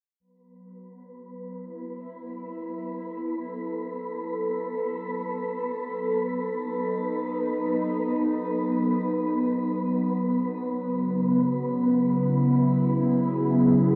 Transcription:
0.20 F#3 B3 B4
0.85 B3
1.14 E4
2.54 A4
6.21 D#4
10.75 C#3
11.60 E4
12.82 G#4

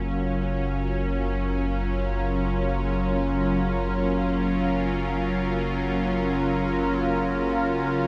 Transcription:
Already playing: F#1 C#3 F#3 A#3 C#4 F4 A#4

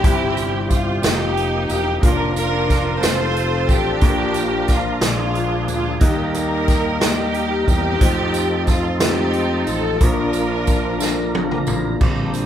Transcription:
Already playing: C4 E4 G4
0.02 G1 G2 C3 G3 C4 E4 G4 E5, kick, closed hi-hat
0.37 closed hi-hat, tambourine
0.70 F4, kick, closed hi-hat, tambourine
1.02 F1 F3 A#3 D#4 F4 G4 D#5, snare, closed hi-hat, tambourine
1.37 closed hi-hat
1.69 E1 G4, closed hi-hat, tambourine
2.01 F1 F3 A#3 D4 F4 A#4 C#5, kick, closed hi-hat
2.11 D5
2.36 D4 F4 A#4, closed hi-hat, tambourine
2.70 kick, snare, closed hi-hat, tambourine
2.99 F1 F3 A3 C4 F4 A4 B4 C5, snare, tambourine
3.03 closed hi-hat
3.10 C5
3.36 closed hi-hat
3.69 A#3 D4 G4, kick, closed hi-hat, tambourine
4.00 A#1 A#2 F3 A#3 D4 F4 A#4 D5, kick, closed hi-hat
4.34 closed hi-hat, tambourine
4.68 F4, kick, snare, closed hi-hat, tambourine
5.01 A#1 A#2 F3 G#3 A#3 D4 F4 G#4 C5, snare, closed hi-hat, tambourine
5.10 D5
5.35 closed hi-hat
5.68 D2, closed hi-hat, tambourine
5.72 F4
6.00 D#2 D#3 G3 A#3 D#4 G4 A#4 D#5, kick, closed hi-hat
6.04 A#3 D#4 G4
6.34 D#4 G4, closed hi-hat, tambourine
6.39 A#4
6.68 kick, snare, closed hi-hat, tambourine
7.01 A#3 D#4 G4 D5, snare, closed hi-hat, tambourine
7.05 A#3 G4
7.10 D#5
7.34 closed hi-hat
7.68 E2 C4 D#4 G4, kick, closed hi-hat, tambourine
7.99 F2 F3 A3 C4 D#4 F4 G#4 C5, kick, closed hi-hat
8.08 A4
8.34 closed hi-hat, tambourine
8.67 kick, snare, closed hi-hat, tambourine
8.71 F4
8.99 G#3 C4 D#4 F4 G4, snare, closed hi-hat, tambourine
9.04 A3 G4
9.33 closed hi-hat
9.67 A1 A4, closed hi-hat, tambourine
10.00 A#1 A#2 F3 A#3 D4 F4 A#4 C5, kick, closed hi-hat
10.05 A#4
10.09 D5
10.33 closed hi-hat, tambourine
10.67 kick, closed hi-hat, tambourine
10.99 A#3 D4 F4 A4, snare, tambourine
11.08 A#4
11.35 high tom
11.51 mid tom
11.67 A1, mid tom, tambourine
12.00 A#1 D3 F3 G3 A#3 C4 D4 G4, kick, crash
12.34 closed hi-hat, tambourine

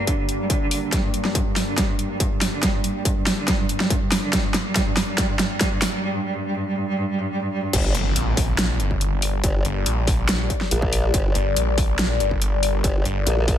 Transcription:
Already playing: G2 G3 A#3 D4
0.07 D3, kick, closed hi-hat
0.18 D3
0.29 D3, closed hi-hat
0.40 G3
0.50 D3, kick, closed hi-hat
0.61 D3
0.71 D3, open hi-hat
0.82 D3
0.92 G3, kick, snare, closed hi-hat
1.04 G2
1.14 G2, closed hi-hat
1.25 G3, snare
1.35 G2, kick, closed hi-hat
1.46 G2
1.56 G2, snare, open hi-hat
1.67 D3
1.78 G3, kick, snare, closed hi-hat
1.89 G2
1.99 G2, closed hi-hat
2.10 G3
2.20 G2, kick, closed hi-hat
2.31 G2
2.41 G2, snare, open hi-hat
2.53 D3
2.63 G3, kick, snare, closed hi-hat
2.74 G2
2.84 G2, closed hi-hat
2.95 G3
3.05 G2, kick, closed hi-hat
3.16 G2
3.27 G2, snare, open hi-hat
3.38 D3
3.48 G3, kick, snare, closed hi-hat
3.59 G2
3.69 G2, closed hi-hat
3.80 G3, snare
3.90 G2, kick, closed hi-hat
4.02 G2
4.12 G2, snare, open hi-hat
4.23 D3
4.33 G3, kick, snare, closed hi-hat
4.44 G2
4.54 G2, snare, closed hi-hat
4.65 G3
4.75 G3, kick, snare, closed hi-hat
4.87 G2
4.97 G2, snare, open hi-hat
5.08 G3
5.18 G3, kick, snare, closed hi-hat
5.29 G2
5.39 G2, snare, closed hi-hat
5.50 G3
5.61 G3, kick, snare, closed hi-hat
5.72 G2
5.82 G2, snare, open hi-hat
5.93 G3
6.03 G3
6.14 G2
6.25 G3
6.36 G2
6.46 G3
6.57 G2
6.67 G3
6.78 G2
6.88 G3
6.99 G2
7.10 G3
7.21 G2
7.31 G3
7.42 G2
7.52 G3
7.63 G2
7.73 G1 G3 G4 A#4 D5, kick, closed hi-hat, crash, impact
7.95 G1, closed hi-hat
8.16 A#1, closed hi-hat
8.37 kick, open hi-hat
8.58 snare, closed hi-hat
8.80 G1, closed hi-hat
8.91 kick
9.01 closed hi-hat
9.22 open hi-hat
9.44 G1, kick, closed hi-hat
9.65 G1, closed hi-hat
9.86 A#1, closed hi-hat
10.07 kick, open hi-hat
10.29 snare, closed hi-hat
10.50 kick, closed hi-hat
10.61 snare
10.71 A#1, closed hi-hat
10.82 kick
10.93 open hi-hat
11.14 G1, kick, closed hi-hat
11.35 G1, closed hi-hat
11.56 A#1, closed hi-hat
11.78 kick, open hi-hat
11.99 snare, closed hi-hat
12.20 G1, closed hi-hat
12.31 kick
12.42 closed hi-hat
12.63 open hi-hat
12.84 G1, kick, closed hi-hat
13.05 G1, closed hi-hat
13.27 A#1, closed hi-hat
13.48 kick, open hi-hat

